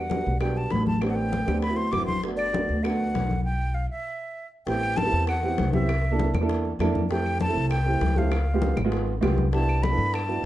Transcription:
Already playing: upright bass E2, flute F#5
0.10 upright piano G3 B3 D4 F#4, high bongo, high conga
0.25 upright bass B1, high bongo, high conga
0.41 upright piano G3 B3 D4 F#4, flute G5, high bongo, high conga, claves
0.56 flute A5, high bongo, high conga
0.71 upright bass A1, flute B5, high bongo, low bongo, high conga
0.86 flute A5, high bongo, high conga
1.01 upright piano B3 C4 D4 G4, high bongo, high conga, claves
1.10 flute F#5
1.15 flute G5, high conga
1.32 high bongo, high conga
1.47 upright bass D2, upright piano B3 C4 D4 G4, high bongo, high conga, claves
1.62 flute B5, high bongo, high conga
1.69 upright piano B3 C4 E4 F#4
1.76 flute C6, high bongo, high conga
1.92 upright bass G1, upright piano B3 C4 E4 F#4, flute D6, high bongo, low bongo, high conga, claves
2.06 flute C6, high bongo, high conga
2.23 upright piano A3 B3 D4 F#4, high bongo, high conga
2.36 flute D5, high conga, claves
2.53 upright piano A3 B3 D4 F#4, high bongo, high conga
2.69 upright bass D2, high bongo, high conga
2.83 upright piano A3 B3 D4 F#4, flute F#5, high bongo, high conga, claves
3.01 high bongo, high conga
3.14 upright bass B1, high bongo, low bongo, high conga
3.30 high bongo, high conga
3.44 flute G5
3.74 flute F5
3.90 flute E5
4.66 upright bass A1, upright piano B3 C4 E4 G4, flute G5, high bongo, high conga
4.83 high conga, claves
4.97 flute A5, high bongo, high conga
5.04 upright piano B3 C4 E4 G4
5.12 upright bass E2, high bongo
5.27 flute F#5, high bongo, high conga, claves
5.43 upright piano B3 C4 E4 G4, high bongo, high conga
5.58 upright bass C2, high bongo, low bongo, high conga
5.73 upright piano B3 C4 E4 G4, flute E5, high bongo, high conga
5.89 high bongo, claves
6.05 high conga
6.11 upright piano A#3 D4 E4 A4
6.19 high bongo, high conga
6.33 upright bass E2, high bongo, high conga, claves
6.41 upright piano A#3 D4 E4 A4
6.49 high bongo, high conga
6.65 high bongo, high conga
6.79 upright bass F2, upright piano A#3 D4 E4 A4, high bongo, low bongo, high conga, claves
6.95 high bongo, high conga
7.10 upright piano A3 C4 E4 G4, flute G5, high bongo, high conga
7.26 high conga, claves
7.41 flute A5, high bongo, high conga
7.48 upright piano A3 C4 E4 A4
7.55 upright bass C2, high bongo, high conga
7.71 flute G5, high bongo, high conga, claves
7.86 upright piano A3 C4 E4 G4, high bongo, high conga
8.01 upright bass C#2, high bongo, low bongo, high conga
8.16 upright piano A3 C4 E4 G4, flute F5, high bongo, high conga
8.31 high bongo, high conga, claves
8.47 high conga
8.54 upright piano G#3 B3 F4 G4
8.62 high bongo, high conga
8.77 upright bass G#1, high bongo, high conga, claves
8.85 upright piano G#3 B3 F4 G#4
8.92 high bongo, high conga
9.07 high bongo, high conga
9.21 upright bass C2, upright piano G#3 B3 F4 G4, high bongo, low bongo, high conga, claves
9.38 high bongo, high conga
9.53 upright piano B3 D4 E4 G4, flute A5, high bongo, high conga
9.68 high conga, claves
9.83 flute B5, high bongo, high conga
9.90 upright piano B3 D4 E4 A4
9.98 upright bass G2, high bongo, high conga
10.14 flute A5, high bongo, high conga, claves
10.28 upright piano B3 D4 E4 F#4, high bongo, high conga

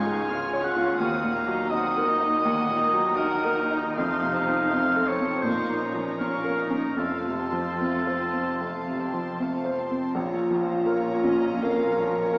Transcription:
Already playing: cello section C#2, double bass section C#2, grand piano C#2 G#2 G#3 F4 C#5, viola section D#4, violin section F4 F5 C#6, oboe G#5
0.07 grand piano G#3
0.28 viola section F4, grand piano F4, violin section G#4 C#5 F6
0.53 grand piano C#5
0.63 viola section C#4, violin section F4 F5 C#6, oboe F#5
0.76 grand piano F4
0.98 cello section D#2, double bass section D#2, grand piano D#2, viola section C4, violin section F#4 F#5 D#6, oboe F5
1.24 grand piano A#2
1.33 viola section A#3, violin section D#4 D#5 A#5
1.48 grand piano F#3
1.70 viola section C4, grand piano D#4, violin section F#4 F#5 D#6, oboe D#5
1.97 grand piano A#4
2.06 viola section A#3, violin section D#4 D#5 A#5
2.20 grand piano D#4
2.41 grand piano D#2, violin section F#4 F#5 D#6
2.69 grand piano A#2
2.78 violin section D#4 D#5 A#5
2.93 grand piano F#3
3.16 viola section D#4, grand piano D#4, violin section F#4 F#5 D#6, oboe A#4
3.44 grand piano A#4
3.56 violin section D#4 D#5 A#5
3.71 grand piano D#4
3.97 double bass section F1, cello section F2, grand piano F2, violin section A3 F5 C6, oboe F5
4.23 grand piano C3
4.35 violin section C4 C5 A5
4.48 grand piano F3
4.71 violin section A3 F5 C6, grand piano C4
4.96 grand piano A4
5.07 violin section C4 C5 A5, oboe C#5
5.20 grand piano C4
5.43 double bass section A#1, grand piano A#2, cello section A#2, violin section A#3 F5 C#6, viola section D#4, oboe C5
5.69 grand piano A#3
5.82 violin section C#4 C#5 A#5
5.94 grand piano F3
6.18 violin section A#3 F5 C#6, viola section C#4, grand piano C#4, oboe A#4
6.44 grand piano A#4
6.57 violin section C#4 C#5 A#5, viola section D#4
6.71 grand piano C#4
6.97 double bass section F1, grand piano F2, cello section F2, violin section A3 F5 A5, viola section F4, oboe A4
7.26 grand piano C3
7.39 violin section C4 A5 C6
7.52 grand piano F3
7.80 violin section A3 F5 A5, grand piano C4
8.07 grand piano C5
8.20 violin section C4 A5 C6
8.33 grand piano C4
8.61 grand piano F2, violin section A3 F5 A5
8.87 grand piano C3
9.01 violin section C4 A5 C6
9.14 grand piano F3
9.40 violin section A3 F5 A5, grand piano C4
9.65 grand piano C5
9.77 violin section C4 A5 C6
9.91 grand piano C4
10.14 grand piano A#1, double bass section A#1, cello section A#2, viola section C#4 F4, french horn section F4, violin section C#5 A#5
10.51 grand piano F3, violin section C5
10.86 grand piano A#4, violin section C#5
11.24 grand piano C#4, violin section D#5
11.62 grand piano F2, french horn section A#4, violin section F5
11.99 grand piano F3, violin section C#5
12.33 grand piano A#4

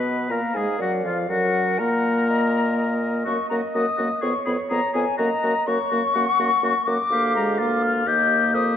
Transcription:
Already playing: bassoon B2, french horn B3, oboe B4, clarinet D#5, flute B5
0.29 bassoon A#2, french horn A#3, oboe A#4, clarinet F5, flute A#5
0.53 bassoon G#2, french horn G#3, oboe G#4, flute G#5
0.78 bassoon F#2, french horn F#3, oboe F#4, clarinet D5, flute F#5
1.04 bassoon F2, french horn F3, oboe F4, flute F5
1.29 bassoon F#2, french horn F#3, oboe F#4, clarinet A#4, flute F#5
1.78 bassoon A#2, french horn A#3, oboe A#4, clarinet F#5, flute A#5
2.29 clarinet D#5
2.78 clarinet D#5
3.25 bassoon F#2, french horn A#3, oboe F#4, flute C#6
3.49 bassoon F#2, french horn A#3, oboe F#4, flute A#5
3.74 bassoon F#2, french horn A#3, oboe F#4, flute D#6
3.97 bassoon F#2, french horn A#3, oboe F#4
4.21 bassoon F2, french horn B3, oboe G#4, clarinet C#5, flute C#6
4.46 bassoon F2, french horn B3, oboe G#4, flute B5
4.69 bassoon F2, french horn B3, oboe G#4, flute A#5
4.94 bassoon F2, french horn B3, oboe G#4, flute G#5
5.18 bassoon F#2, french horn A#3, oboe F#4, clarinet D#5, flute A#5
5.43 bassoon F#2, french horn A#3, oboe F#4
5.67 bassoon F#2, french horn A#3, oboe F#4, clarinet C#5, flute C#6
5.91 bassoon F#2, french horn A#3, oboe F#4
6.14 bassoon F#2, french horn A#3, oboe F#4, clarinet F#5
6.39 bassoon F#2, french horn A#3, oboe F#4
6.63 bassoon F#2, french horn A#3, oboe F#4
6.87 bassoon F#2, french horn A#3, oboe F#4, flute D6
7.10 bassoon D2, french horn A#3, oboe G4, clarinet F5
7.36 french horn G#3, flute A#5
7.58 french horn A#3, oboe F4, clarinet F5, flute D6
7.83 flute F6
8.06 bassoon D#2, french horn A#3, oboe G4, clarinet D#5, flute G6
8.54 bassoon F2, oboe G4, clarinet C5, flute D#6

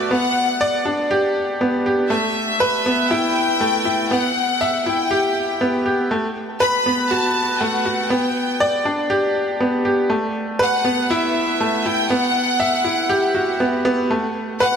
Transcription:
Already playing: upright piano A3 B3 F#4 B4, violin section D5
0.11 upright piano B3, violin section F#5
0.61 upright piano D5
0.85 upright piano D4
1.11 upright piano G4
1.61 upright piano B3
1.86 upright piano G4
2.10 upright piano A3, violin section E5
2.60 upright piano B4
2.86 upright piano B3
3.10 upright piano E4, violin section G5
3.61 upright piano A3
3.85 upright piano E4
4.11 upright piano B3, violin section F#5
4.61 upright piano E5
4.86 upright piano E4, violin section G5
5.11 upright piano G4
5.61 upright piano B3
5.86 upright piano G4
6.11 upright piano A3
6.60 upright piano B4, violin section B5
6.86 upright piano B3
7.10 upright piano F#4, violin section A5
7.60 upright piano A3, violin section F#5
7.85 upright piano F#4
8.09 upright piano B3, violin section G5
8.60 upright piano D5
8.85 upright piano D4
9.10 upright piano G4
9.60 upright piano B3
9.85 upright piano G4
10.10 upright piano A3
10.59 upright piano B4, violin section F#5
10.85 upright piano B3
11.11 upright piano E4, violin section E5
11.61 upright piano A3
11.86 upright piano E4, violin section G5
12.10 upright piano B3, violin section F#5
12.60 upright piano E5
12.84 upright piano E4
13.09 upright piano G4
13.35 upright piano F#4
13.60 upright piano B3
13.85 upright piano B3
14.10 upright piano A3
14.60 upright piano B4, violin section F#5

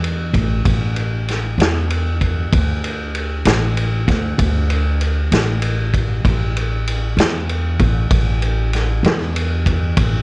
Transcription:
Already playing: upright bass E2
0.04 ride
0.34 upright bass A1, kick, ride
0.65 upright bass A1, kick, ride
0.96 ride
1.29 snare, ride
1.58 upright bass E2, snare, ride
1.90 ride
2.21 kick, ride
2.53 upright bass D2, kick, ride
2.84 ride
3.15 ride
3.45 upright bass A1, snare, ride
3.77 ride
4.08 upright bass D2, kick, snare, ride
4.38 upright bass D2, kick, ride
4.70 ride
5.01 ride
5.32 upright bass A1, snare, ride
5.62 ride
5.94 kick, ride
6.25 upright bass A1, kick, ride
6.57 ride
6.88 ride
7.17 upright bass E2, snare, ride
7.49 ride
7.79 upright bass A1, kick, ride
8.10 upright bass A1, kick, ride
8.42 ride
8.73 snare, ride
9.03 upright bass E2, snare, ride
9.36 ride
9.66 kick, ride
9.97 upright bass A1, kick, ride

